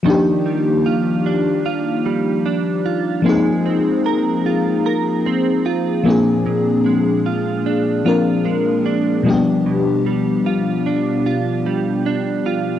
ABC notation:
X:1
M:4/4
L:1/8
Q:"Swing 16ths" 1/4=75
K:Eb
V:1 name="Clean electric guitar"
E, G, F D F G, D F | A, C B F B C F B,, | B,, A, F D F A, D =B,, | =B,, G, F D F G, D F |]
V:2 name="FM electric piano"
[F,B,DEG]8 | [F,B,CEA]6- [F,B,CEA] [F,B,CDA]- | [F,B,CDA]4 [F,B,CDB]3 [=B,,F,G,_B,=B,DG]- | [=B,,F,G,_B,=B,DG]6- [B,,F,G,_B,=B,DG] z |]